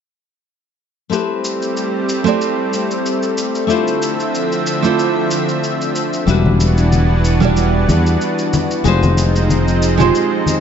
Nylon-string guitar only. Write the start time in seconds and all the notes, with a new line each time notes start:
1.10 A3 C4 E4 G4 B4
2.24 A3 C4 E4 G4 D5
3.67 A3 D4 E4 F4 C5
4.82 A3 D4 E4 F4 C5
6.27 G3 D4 E4 F#4 B4
7.40 G3 D4 E4 F#4
7.44 D5
8.84 G#3 D#4 F4 G4 C5
9.97 G#3 D#4 F4 G4 C5